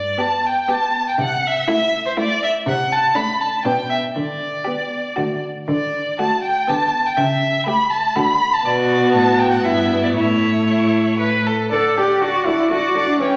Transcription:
0.00 0.21 D5 medium
0.18 0.56 B3 soft
0.18 0.56 G4 soft
0.18 0.48 A5 medium
0.46 0.71 G5 medium
0.68 1.06 B3 soft
0.68 1.06 G4 soft
0.68 1.07 A5 medium
1.08 1.13 G5 medium
1.18 1.58 C3 medium
1.18 1.48 F#5 medium
1.47 1.70 E5 medium
1.68 2.05 A3 medium
1.68 2.05 E4 medium
1.68 2.06 E5 medium
2.06 2.11 C5 medium
2.17 2.54 A3 medium
2.17 2.54 E4 medium
2.17 2.42 D5 medium
2.44 2.52 E5 medium
2.66 3.05 C3 medium
2.66 2.94 F#5 medium
2.92 3.17 A5 medium
3.15 3.53 A3 medium
3.15 3.52 D4 medium
3.15 3.42 B5 medium
3.41 3.65 A5 medium
3.65 4.05 B2 medium
3.65 4.03 B3 medium
3.65 4.02 D4 soft
3.65 3.89 G5 medium
3.90 3.98 E5 medium
4.16 4.56 D3 medium
4.16 5.41 D5 soft
4.65 5.04 B3 soft
4.65 5.03 G4 soft
5.16 5.57 D3 medium
5.16 5.55 A3 soft
5.16 5.55 F#4 soft
5.68 6.08 D3 medium
5.68 6.15 D5 medium
6.19 6.56 A3 medium
6.19 6.56 F#4 soft
6.19 6.43 A5 medium
6.43 6.71 G5 medium
6.68 7.08 D3 medium
6.68 7.05 B3 soft
6.68 7.06 G4 medium
6.68 7.07 A5 medium
7.06 7.18 G5 medium
7.17 7.57 C#3 medium
7.17 7.66 E5 medium
7.67 8.03 A3 medium
7.67 8.04 G4 medium
7.67 7.92 B5 medium
7.90 8.17 A5 medium
8.16 8.55 D3 medium
8.16 8.52 A3 medium
8.16 8.52 F#4 medium
8.16 8.55 B5 medium
8.53 8.67 A5 medium
8.65 9.15 B2 medium
8.65 9.60 B3 medium
8.65 9.66 F#4 medium
8.65 9.13 D5 medium
9.14 9.64 A2 medium
9.14 9.41 A5 medium
9.39 9.53 G5 medium
9.51 9.65 F#5 medium
9.64 10.14 G2 medium
9.64 10.18 B3 medium
9.64 10.16 E4 medium
9.64 10.02 E5 medium
10.03 10.08 D5 medium
10.15 11.48 A2 medium
10.15 11.52 A3 medium
10.15 10.62 E4 soft
10.15 11.17 C#5 medium
10.67 11.16 E4 medium
11.19 11.48 B4 medium
11.47 11.71 A4 soft
11.72 11.80 D3 soft
11.72 11.99 A4 medium
11.72 11.96 D5 soft
11.72 11.96 F#5 soft
11.96 12.04 D3 soft
11.96 12.23 G4 medium
11.96 12.22 D5 soft
11.96 12.21 F#5 soft
12.22 12.30 D3 soft
12.22 12.47 F#4 medium
12.22 12.46 D5 soft
12.22 12.47 F#5 soft
12.46 12.55 D3 soft
12.46 12.70 E4 medium
12.46 12.71 D5 soft
12.46 12.71 F#5 soft
12.71 12.79 D3 soft
12.71 13.07 F#4 medium
12.71 12.96 D5 soft
12.71 12.96 F#5 soft
12.95 13.03 D3 soft
12.95 13.20 D5 soft
12.95 13.21 F#5 soft
13.08 13.20 D4 medium
13.21 13.29 E3 medium
13.21 13.37 C#4 medium
13.21 13.37 C#5 soft
13.21 13.37 G5 soft

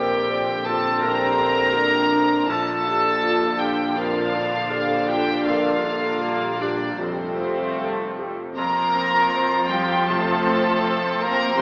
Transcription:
0.00 0.99 A#1 medium
0.00 2.46 A#1 medium
0.00 2.46 A#2 medium
0.00 2.45 D3 medium
0.00 0.52 C4 soft
0.00 2.46 C4 medium
0.00 0.67 G4 loud
0.00 0.29 A#4 medium
0.00 0.65 G5 medium
0.30 0.67 C5 medium
0.30 0.88 D5 medium
0.65 1.25 D4 medium
0.65 1.03 F4 medium
0.65 1.03 A4 medium
0.65 1.03 A5 loud
1.02 2.46 A#1 medium
1.02 1.75 G4 medium
1.02 2.49 A#4 loud
1.02 2.49 A#5 loud
1.40 1.98 C4 medium
1.74 2.49 D4 medium
1.74 2.35 D5 medium
2.12 2.50 D4 medium
2.48 3.93 A#1 medium
2.48 6.97 A#1 medium
2.48 6.96 A#2 medium
2.48 6.96 D3 medium
2.48 5.42 F3 medium
2.48 6.96 D4 medium
2.48 2.86 F4 medium
2.48 3.63 A4 loud
2.48 3.58 A5 loud
2.85 3.45 D4 soft
2.85 3.23 G4 medium
3.21 3.59 F4 medium
3.21 3.82 D5 medium
3.58 3.96 D4 medium
3.58 4.19 F4 medium
3.58 3.98 G4 medium
3.58 3.97 G5 medium
3.96 4.56 F2 medium
3.96 5.11 F4 medium
3.96 4.34 A#4 medium
3.96 5.09 F5 medium
4.33 4.94 D4 medium
4.33 4.71 A4 medium
4.70 5.08 G4 medium
4.70 5.31 D5 soft
5.08 5.45 F4 medium
5.08 5.46 F4 medium
5.08 5.47 G4 medium
5.08 5.46 G5 loud
5.44 6.96 A#1 medium
5.44 8.33 G3 medium
5.44 6.96 A#3 medium
5.44 6.63 F4 medium
5.44 5.84 A#4 medium
5.44 6.57 F5 medium
5.83 6.45 D4 soft
5.83 6.21 A4 medium
6.19 6.59 G4 medium
6.19 6.84 D5 soft
6.60 7.00 D4 medium
6.60 7.00 F4 medium
6.60 7.01 G4 medium
6.60 7.00 D5 medium
6.99 8.34 F1 medium
6.99 7.69 F2 medium
6.99 8.53 F2 medium
6.99 8.32 F3 medium
6.99 8.33 A3 medium
6.99 7.77 C4 medium
6.99 8.33 C4 medium
6.99 8.17 A4 medium
6.99 7.79 C5 medium
7.40 8.03 C4 soft
7.78 8.15 G2 medium
7.78 8.42 A4 soft
8.18 8.57 F2 medium
8.18 8.57 G4 soft
8.56 11.55 F2 medium
8.56 10.05 F2 medium
8.56 11.54 F3 medium
8.56 9.67 A#3 medium
8.56 11.62 C4 medium
8.56 11.54 F4 medium
8.56 9.67 A#4 medium
8.56 9.66 A#5 loud
8.56 11.54 C6 medium
8.96 9.56 C4 soft
9.35 9.94 C5 medium
9.69 10.08 G3 medium
9.69 10.32 F4 medium
9.69 10.08 G4 medium
9.69 10.08 G5 medium
10.07 10.69 C3 medium
10.07 11.21 A3 medium
10.07 11.22 A4 medium
10.07 11.20 A5 medium
10.47 11.06 C4 medium
10.84 11.44 C5 medium
11.21 11.59 A#3 medium
11.21 11.59 F4 medium
11.21 11.59 A#4 loud
11.21 11.59 A#5 loud
11.57 11.62 G3 medium
11.57 11.62 C6 loud

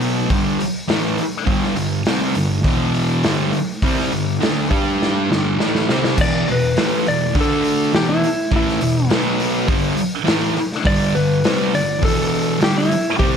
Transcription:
0.00 0.29 B2 loud
0.00 0.30 F#3 loud
0.00 0.30 B3 loud
0.00 open hi-hat medium
0.29 0.58 G2 loud
0.29 0.59 D3 loud
0.29 0.59 G3 loud
0.29 kick loud
0.29 open hi-hat medium
0.59 muted distorted electric guitar stroke medium
0.59 open hi-hat medium
0.88 1.17 A2 medium
0.88 1.18 E3 loud
0.88 1.18 A3 medium
0.88 snare loud
0.88 open hi-hat medium
1.18 muted distorted electric guitar stroke medium
1.18 open hi-hat medium
1.46 1.75 G2 loud
1.46 1.75 D3 loud
1.46 1.76 G3 loud
1.46 kick loud
1.46 open hi-hat medium
1.63 snare soft
1.76 2.00 G2 medium
1.76 2.00 D3 medium
1.76 open hi-hat medium
2.05 2.35 C3 medium
2.05 2.35 G3 loud
2.05 2.36 C4 loud
2.05 snare loud
2.05 open hi-hat medium
2.35 2.59 G2 medium
2.35 2.60 D3 medium
2.35 open hi-hat medium
2.64 3.23 E2 loud
2.64 3.24 B2 loud
2.64 3.24 E3 loud
2.64 kick loud
2.64 open hi-hat medium
2.94 open hi-hat medium
3.23 3.53 G2 loud
3.23 3.53 D3 loud
3.23 3.54 G3 loud
3.23 snare loud
3.23 open hi-hat medium
3.53 muted distorted electric guitar stroke medium
3.53 open hi-hat medium
3.82 4.11 C3 loud
3.82 4.12 G3 loud
3.82 4.12 C4 loud
3.82 kick loud
3.82 open hi-hat medium
3.99 snare soft
4.12 4.36 G2 medium
4.12 4.36 D3 medium
4.12 open hi-hat medium
4.40 4.69 D3 medium
4.40 4.69 A3 medium
4.40 4.69 D4 loud
4.40 snare loud
4.40 open hi-hat medium
4.70 5.28 G3 medium
4.70 5.28 D4 medium
4.70 5.29 G4 loud
4.70 kick loud
4.70 open hi-hat medium
5.02 snare medium
5.30 5.58 G2 medium
5.30 5.59 D3 medium
5.30 5.59 G3 loud
5.30 snare medium
5.59 5.88 A2 medium
5.59 5.88 E3 loud
5.59 5.88 A3 loud
5.59 snare medium
5.75 snare medium
5.89 6.17 C3 medium
5.89 6.17 G3 medium
5.89 6.17 C4 medium
5.89 snare loud
6.04 snare medium
6.18 6.46 E2 loud
6.18 6.46 B2 loud
6.18 6.46 E3 loud
6.18 6.48 D5 loud
6.18 kick loud
6.18 crash loud
6.47 6.70 E2 medium
6.47 6.71 B2 medium
6.47 open hi-hat medium
6.52 7.06 B4 medium
6.77 7.05 A2 medium
6.77 7.06 E3 loud
6.77 7.06 A3 loud
6.77 snare loud
6.77 open hi-hat medium
7.06 7.29 E2 medium
7.06 7.30 B2 medium
7.06 7.35 D5 medium
7.06 open hi-hat medium
7.35 7.93 D3 loud
7.35 7.93 A3 loud
7.35 7.93 D4 loud
7.35 kick loud
7.35 open hi-hat medium
7.41 7.95 A4 loud
7.64 open hi-hat medium
7.93 8.21 E2 medium
7.93 8.22 B2 loud
7.93 8.22 E3 loud
7.93 8.09 G4 loud
7.93 snare loud
7.93 open hi-hat medium
8.09 8.51 E4 loud
8.23 muted distorted electric guitar stroke medium
8.23 open hi-hat medium
8.52 8.80 A2 loud
8.52 8.80 E3 loud
8.52 8.81 A3 loud
8.52 kick loud
8.52 open hi-hat medium
8.56 9.11 E4 medium
8.68 snare soft
8.81 9.04 E2 medium
8.81 9.05 B2 medium
8.81 open hi-hat medium
9.10 9.67 B2 medium
9.10 9.68 F#3 loud
9.10 9.69 B3 loud
9.10 snare loud
9.10 open hi-hat medium
9.40 open hi-hat medium
9.67 9.96 G2 loud
9.67 9.97 D3 loud
9.67 9.97 G3 loud
9.67 kick loud
9.67 open hi-hat medium
9.96 muted distorted electric guitar stroke medium
9.96 open hi-hat medium
10.25 10.54 A2 medium
10.25 10.55 E3 loud
10.25 10.55 A3 loud
10.25 snare loud
10.25 open hi-hat medium
10.56 muted distorted electric guitar stroke medium
10.56 open hi-hat medium
10.72 snare soft
10.85 11.14 G2 loud
10.85 11.14 D3 loud
10.85 11.14 G3 loud
10.85 11.15 D5 loud
10.85 kick loud
10.85 open hi-hat medium
11.15 11.38 G2 medium
11.15 11.38 D3 medium
11.15 11.72 B4 medium
11.15 open hi-hat medium
11.44 11.73 C3 loud
11.44 11.73 G3 loud
11.44 11.73 C4 loud
11.44 snare loud
11.44 open hi-hat loud
11.73 11.97 G2 medium
11.73 11.97 D3 medium
11.73 12.02 D5 medium
11.73 open hi-hat medium
12.01 12.59 E2 loud
12.01 12.60 B2 loud
12.01 12.60 E3 loud
12.01 12.60 A4 medium
12.01 kick loud
12.01 open hi-hat loud
12.33 open hi-hat medium
12.60 12.89 G2 medium
12.60 12.89 D3 loud
12.60 12.89 G3 loud
12.60 snare loud
12.60 open hi-hat medium
12.64 12.77 G4 medium
12.78 13.19 E4 loud
12.91 muted distorted electric guitar stroke medium
12.91 open hi-hat medium
13.19 13.37 C3 loud
13.19 13.37 G3 loud
13.19 13.37 C4 loud
13.19 13.37 G4 loud
13.19 kick loud
13.19 open hi-hat medium

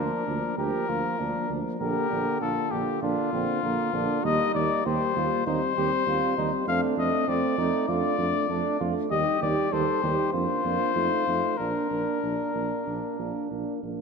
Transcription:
0.00 0.10 D2 soft
0.00 0.27 F3 soft
0.00 0.27 A#3 soft
0.00 0.57 D4 soft
0.00 0.56 A#4 medium
0.27 0.41 D2 soft
0.27 0.57 F3 soft
0.27 0.57 A#3 soft
0.57 0.71 D2 soft
0.57 0.87 F3 soft
0.57 0.88 A#3 soft
0.57 0.90 G4 medium
0.57 1.51 A#4 medium
0.88 1.02 D2 soft
0.88 1.19 F3 soft
0.88 1.19 A#3 soft
0.88 1.21 F4 soft
1.19 1.33 D2 soft
1.19 1.48 F3 soft
1.19 1.50 A#3 soft
1.19 1.59 D4 soft
1.49 1.63 D2 soft
1.49 1.79 F3 soft
1.49 1.80 A#3 soft
1.80 1.94 A#1 medium
1.80 2.09 D3 soft
1.80 2.10 A#3 soft
1.80 2.43 G4 medium
1.80 2.38 A#4 medium
2.10 2.25 A#1 medium
2.10 2.41 D3 soft
2.10 2.41 A#3 soft
2.41 2.55 A#1 soft
2.41 2.71 D3 soft
2.41 2.72 A#3 soft
2.41 3.02 F4 soft
2.41 2.73 A4 medium
2.71 2.85 A#1 soft
2.71 3.02 D3 soft
2.71 3.02 A#3 soft
2.71 3.02 G4 medium
3.02 3.16 A#1 medium
3.02 3.32 D3 soft
3.02 3.33 A#3 soft
3.02 3.32 D4 soft
3.02 4.26 F4 medium
3.32 3.46 A#1 medium
3.32 3.62 D3 soft
3.32 3.63 A#3 soft
3.32 3.62 C4 soft
3.63 3.77 A#1 soft
3.63 3.92 D3 soft
3.63 3.96 A#3 medium
3.63 3.93 A#3 soft
3.93 4.07 A#1 medium
3.93 4.22 D3 soft
3.93 4.24 A#3 soft
3.93 4.25 D4 medium
4.23 4.38 D#2 medium
4.23 4.54 G3 medium
4.23 4.54 A#3 medium
4.23 4.87 D#4 medium
4.23 4.54 D#5 medium
4.54 4.68 D#2 medium
4.54 4.85 G3 soft
4.54 4.85 A#3 soft
4.54 4.85 D5 medium
4.85 4.99 D#2 medium
4.85 5.15 G3 soft
4.85 5.16 A#3 soft
4.85 5.16 G4 medium
4.85 5.46 C5 medium
5.15 5.30 D#2 medium
5.15 5.45 G3 soft
5.15 5.46 A#3 soft
5.15 5.46 F4 medium
5.46 5.60 D#2 medium
5.46 5.76 G3 soft
5.46 5.76 C4 soft
5.46 5.60 D#4 soft
5.46 6.65 C5 medium
5.76 5.91 D#2 medium
5.76 6.06 G3 soft
5.76 6.07 C4 soft
5.76 5.90 G4 soft
6.07 6.20 D#2 soft
6.07 6.37 G3 soft
6.07 6.37 C4 soft
6.07 6.37 F4 medium
6.37 6.51 D#2 medium
6.37 6.67 G3 soft
6.37 6.67 C4 soft
6.37 6.51 D#4 medium
6.67 6.81 F2 medium
6.67 6.97 A3 soft
6.67 6.97 C4 medium
6.67 7.27 D4 medium
6.67 6.82 F5 medium
6.97 7.11 F2 medium
6.97 7.28 A3 soft
6.97 7.28 C4 soft
6.97 7.30 D#5 medium
7.27 7.41 F2 soft
7.27 7.58 A3 soft
7.27 7.60 C4 soft
7.27 7.58 C4 soft
7.27 7.88 D5 medium
7.57 7.71 F2 soft
7.57 7.88 A3 soft
7.57 7.88 C4 soft
7.57 7.90 D#4 medium
7.88 8.02 F2 medium
7.88 8.18 A3 soft
7.88 8.17 D4 soft
7.88 8.28 F4 soft
7.88 8.81 D5 medium
8.18 8.32 F2 medium
8.18 8.49 A3 soft
8.18 8.48 D4 medium
8.49 8.63 F2 soft
8.49 8.80 A3 soft
8.49 8.79 D4 soft
8.49 8.78 D4 medium
8.80 8.94 F2 medium
8.80 9.10 A3 soft
8.80 9.10 D4 soft
8.80 8.94 F4 soft
9.10 9.25 D#2 soft
9.10 9.41 G3 soft
9.10 9.40 D#4 medium
9.10 9.71 G4 medium
9.10 9.39 D#5 medium
9.41 9.56 D#2 soft
9.41 9.71 G3 soft
9.41 9.71 D#4 soft
9.41 9.74 D5 medium
9.72 9.86 D#2 soft
9.72 10.02 G3 soft
9.72 10.02 D#4 soft
9.72 10.04 A4 medium
9.72 10.32 C5 medium
10.03 10.17 D#2 soft
10.03 10.32 G3 soft
10.03 10.33 D#4 soft
10.03 10.33 G4 medium
10.33 10.47 F2 soft
10.33 10.64 A#3 soft
10.33 10.64 D4 soft
10.33 11.56 F4 medium
10.33 11.59 C5 medium
10.64 10.78 F2 soft
10.64 10.95 A#3 soft
10.64 10.95 D4 soft
10.95 11.10 F2 soft
10.95 11.26 A3 soft
10.95 11.26 D#4 soft
11.27 11.41 F2 soft
11.27 11.58 A3 soft
11.27 11.58 D#4 soft
11.57 11.73 A#1 soft
11.57 11.90 A#3 soft
11.57 13.80 D4 soft
11.57 11.90 D4 soft
11.57 13.51 A#4 medium
11.90 12.05 A#1 soft
11.90 12.22 A#3 soft
11.90 12.22 D4 soft
12.23 12.37 A#1 soft
12.23 12.54 A#3 soft
12.23 12.54 D4 soft
12.54 12.69 A#1 soft
12.54 12.86 A#3 soft
12.54 12.86 D4 soft
12.87 13.02 A#1 soft
12.87 13.18 A#3 soft
12.87 13.18 D4 soft
13.19 13.34 A#1 soft
13.19 13.50 A#3 soft
13.19 13.50 D4 soft
13.51 13.66 A#1 soft
13.51 13.82 A#3 soft
13.51 13.82 D4 soft
13.83 13.97 A#1 soft
13.83 14.01 A#3 soft
13.83 14.01 D4 soft

